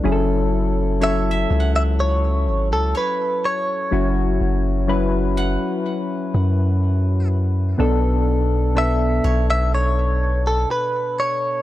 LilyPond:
<<
  \new Staff \with { instrumentName = "Guzheng" } { \time 4/4 \key fis \minor \tempo 4 = 62 r4 cis''16 e''16 fis''4. cis''4~ | cis''4~ cis''16 r16 fis''2~ fis''16 r16 | r4. cis''2~ cis''16 r16 | }
  \new Staff \with { instrumentName = "Clean electric guitar" } { \time 4/4 \key fis \minor r4 e''8. e''16 cis''8. a'16 b'8 cis''8~ | cis''2.~ cis''8 r8 | r4 e''8. e''16 cis''8. a'16 b'8 cis''8 | }
  \new Staff \with { instrumentName = "Synth keys" } { \time 4/4 \key fis \minor <fis cis' e' gis' a'>4 <fis cis' e' a'>4. r4. | <fis cis' e' fis'>4 <fis cis' e' b'>4. r4. | <b, b d' a'>4 <b, b d' a'>4. r4. | }
  \new Staff \with { instrumentName = "808-style bass" } { \clef bass \time 4/4 \key fis \minor fis,,4. cis,4 gis,,16 cis,16 r4 | fis,,8 fis,,4~ fis,,16 r8. fis,4. | b,,4. b,,4. r4 | }
>>